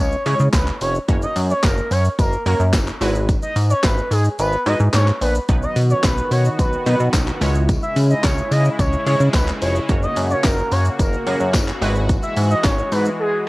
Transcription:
0.00 C#2 C#5
0.12 shaker
0.26 C#3 G#3 C#4 E4 C#5, open hi-hat, tambourine, shaker
0.40 C#3, shaker
0.53 C#2 B4, kick, snare, clap, closed hi-hat, tambourine, shaker
0.67 clap, shaker
0.81 F1 C#5, open hi-hat, tambourine, shaker
0.95 shaker
1.08 F#1 A#3 C#4 F#4 C#5, kick, closed hi-hat, shaker
1.22 D#5, shaker
1.36 F#2, open hi-hat, tambourine, shaker
1.50 C#5, shaker
1.63 F#1 A#4, kick, snare, clap, closed hi-hat, tambourine, shaker
1.77 shaker
1.91 F#2 C#5, open hi-hat, tambourine, shaker
2.05 shaker
2.19 F#1 A#4, kick, closed hi-hat, tambourine, shaker
2.33 shaker
2.46 F#2 A#3 C#4 F#4 A#4 C#5, open hi-hat, tambourine, shaker
2.60 F#2, shaker
2.73 F#1, kick, snare, clap, closed hi-hat, tambourine, shaker
2.88 clap, shaker
3.01 G#1 G#3 E4 F#4 B4, open hi-hat, tambourine, shaker
3.15 shaker
3.29 kick, closed hi-hat, tambourine, shaker
3.42 D#5, shaker
3.56 G#2, open hi-hat, tambourine, shaker
3.70 C#5, shaker
3.83 G#1 B4, kick, snare, clap, closed hi-hat, tambourine, shaker
3.98 shaker
4.11 G#2 G#4, open hi-hat, tambourine, shaker
4.25 shaker
4.39 G#1 B4, closed hi-hat, tambourine, shaker
4.53 shaker
4.66 G#2 G#3 E4 F#4 B4 D#5, open hi-hat, shaker
4.80 G#2, shaker
4.93 G#2 C#5, snare, clap, closed hi-hat, tambourine, shaker
5.07 clap, shaker
5.21 A#1 B4, open hi-hat, tambourine, shaker
5.35 shaker
5.49 B1 D#3 F#3 B3 D#4 F#4 B4, kick, closed hi-hat, shaker
5.62 D#5, shaker
5.76 B2, open hi-hat, tambourine, shaker
5.90 C#5, shaker
6.03 B1 B4, kick, snare, clap, closed hi-hat, tambourine, shaker
6.18 shaker
6.31 B2 C#5, open hi-hat, tambourine, shaker
6.45 shaker
6.59 B1 B4, kick, closed hi-hat, tambourine, shaker
6.73 shaker
6.86 B2 F#3 B3 D#4 B4, open hi-hat, shaker
7.00 B2, shaker
7.13 B1, kick, snare, clap, closed hi-hat, tambourine, shaker
7.27 clap, shaker
7.41 C#2 C#3 G#3 C#4 E4 C#5, open hi-hat, tambourine, shaker
7.55 shaker
7.69 kick, closed hi-hat, tambourine, shaker
7.83 E5, shaker
7.96 C#3, open hi-hat, tambourine, shaker
8.10 D#5, shaker
8.23 C#2 C#5, kick, snare, clap, closed hi-hat, tambourine, shaker
8.38 shaker
8.51 C#3 D#5, open hi-hat, tambourine, shaker
8.65 shaker
8.79 C#2 C#5, kick, closed hi-hat, tambourine, shaker
8.93 shaker
9.06 C#3 G#3 C#4 E4 C#5, open hi-hat, tambourine, shaker
9.20 C#3, shaker
9.33 C#2 B4, kick, snare, clap, closed hi-hat, tambourine, shaker
9.48 clap, shaker
9.62 F1 C#5, open hi-hat, tambourine, shaker
9.75 shaker
9.89 F#1 A#3 C#4 F#4 C#5, kick, closed hi-hat, shaker
10.03 D#5, shaker
10.16 F#2, open hi-hat, tambourine, shaker
10.30 C#5, shaker
10.43 F#1 A#4, kick, snare, clap, closed hi-hat, tambourine, shaker
10.58 shaker
10.71 F#2 C#5, open hi-hat, tambourine, shaker
10.85 shaker
10.99 F#1 A#4, kick, closed hi-hat, tambourine, shaker
11.13 shaker
11.26 F#2 A#3 C#4 F#4 G#4 A#4, open hi-hat, shaker
11.40 F#2, shaker
11.54 F#1, kick, snare, clap, closed hi-hat, tambourine, shaker
11.68 clap, shaker
11.81 G#1 E3 G#3 E4 F#4 B4, open hi-hat, tambourine, shaker
11.95 shaker
12.09 kick, closed hi-hat, tambourine, shaker
12.23 E5, shaker
12.37 G#2, open hi-hat, tambourine, shaker
12.50 D#5, shaker
12.64 G#1 C#5, kick, snare, clap, closed hi-hat, tambourine, shaker
12.78 shaker
12.92 G#2 B4, open hi-hat, tambourine, shaker
13.05 shaker
13.20 G#4

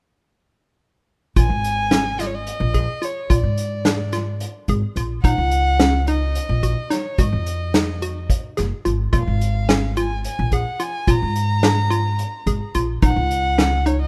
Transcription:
1.36 A#1 F4 G#5, kick, closed hi-hat
1.49 G#1
1.64 closed hi-hat
1.91 C#4, snare, closed hi-hat
2.19 F4 D#5, snare, closed hi-hat
2.26 C#5
2.35 D#5
2.47 closed hi-hat
2.60 A#1
2.74 G#4, kick, closed hi-hat
3.02 F4 C#5, closed hi-hat
3.30 A#1 F4 D5, kick, closed hi-hat
3.43 G#2
3.58 closed hi-hat
3.85 D4, snare, closed hi-hat
4.12 F4, snare, closed hi-hat
4.40 closed hi-hat
4.68 G#1 G#4, kick, closed hi-hat
4.96 A#1 F4, closed hi-hat
5.23 A#1 D#4 F#5, kick, closed hi-hat
5.38 C#2
5.51 closed hi-hat
5.80 C#4, snare, closed hi-hat
6.07 D#4 D#5, closed hi-hat
6.35 closed hi-hat
6.49 A#1
6.63 F#4, kick, closed hi-hat
6.90 D#4 C#5, snare, closed hi-hat
7.18 G#1 F#4 D#5, kick, closed hi-hat
7.33 F2
7.46 closed hi-hat
7.74 D#4, snare, closed hi-hat
8.02 F#4, closed hi-hat
8.30 kick, closed hi-hat
8.57 F#1 G#4, snare, closed hi-hat
8.85 G#1 F4, closed hi-hat
9.13 A#1 F4 F5, kick, closed hi-hat
9.27 G#1
9.41 closed hi-hat
9.69 C#4, snare, closed hi-hat
9.97 F4 G#5, closed hi-hat
10.24 G#5, closed hi-hat
10.39 A#1
10.52 G#4 F#5, kick, closed hi-hat
10.80 F4 G#5, closed hi-hat
11.07 A#1 F4 A#5, kick, closed hi-hat
11.22 G#2
11.36 closed hi-hat
11.63 D4, snare, closed hi-hat
11.90 F4, closed hi-hat
12.19 closed hi-hat
12.46 G#1 G#4, kick, closed hi-hat
12.75 A#1 F4, closed hi-hat
13.02 A#1 D#4 F#5, kick, closed hi-hat
13.16 C#2
13.31 closed hi-hat
13.58 C#4, snare, closed hi-hat
13.86 D#4 C#5, closed hi-hat
14.02 D#5

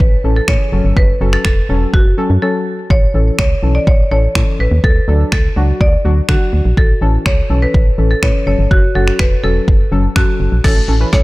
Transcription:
Already playing: B4
0.00 A1, kick
0.24 A1 E3 C#4 A4
0.36 A4
0.48 A2 E3 C#4 G#4 C#5, finger snap, kick
0.72 F#1 F#3 C#4 A4
0.85 G1
0.97 F#1 B4, kick
1.21 F#1 F#3 C#4 A4
1.33 A4, finger snap
1.45 E1 A4, finger snap, kick
1.69 E1 F#3 C#4 A4
1.94 F#1 F#4, kick
2.06 F#1
2.17 F#3 C#4 A4
2.30 F#2
2.42 F#3 C#4 A4
2.90 A1 C#5, kick
3.14 A1 E3 C#4 A4
3.39 C#2 C#5, finger snap, kick
3.63 B1 E3 C#4 A4
3.75 D5
3.87 A1 C#5, kick
4.11 A1 E3 C#4 A4 C#5
4.35 A2 E3 C#4 A4, finger snap, kick
4.60 A1 B4
4.72 D#2
4.84 D2 A4, kick
5.08 D2 F#3 D4 A4
5.32 C#2 A4, finger snap, kick
5.56 C#2 F#3 D4 F#4
5.81 D2 D5, kick
6.05 D2 F#3 D4 F#4
6.29 D3 F#3 D4 F#4, finger snap, kick
6.53 D2
6.65 A#1
6.77 A1 A4, kick
7.01 A1 E3 C#4 A4
7.26 C#2 C#5, finger snap, kick
7.50 B1 E3 C#4 A4
7.62 B4
7.74 A1, kick
7.98 A1 E3 C#4 A4
8.11 A4
8.22 A2 E3 C#4 B4 C#5, finger snap, kick
8.47 F#1 F#3 C#4 A4 C#5
8.59 G1
8.71 F#1 F#4, kick
8.95 F#1 F#3 C#4 F#4 A4
9.08 finger snap
9.19 E1 B4, finger snap, kick
9.43 E1 F#3 C#4 A4
9.68 F#1, kick
9.92 F#1 F#3 C#4 A4
10.16 F#2 F#3 C#4 F#4 A4, finger snap, kick
10.40 F#1
10.52 A#1
10.64 A1 E3 A3 C#4 E4 A4 C#5 E5, kick, snare, crash
10.76 A3
10.88 A1 E3 C#4 A4
11.00 E3 C#4 B4
11.12 C#2 E3 C#4 A4 C#5, kick, snare

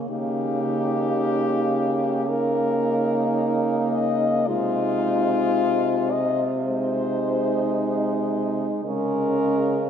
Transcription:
0.09 C#3 A#3 D#4 G4
2.29 A#3 D#4 A#4
3.92 D#5
4.47 C3 G#3 D#4 F4
6.11 D#5
6.66 G#3 D#4 C5
8.85 C#3 G#3 C#4 A#4

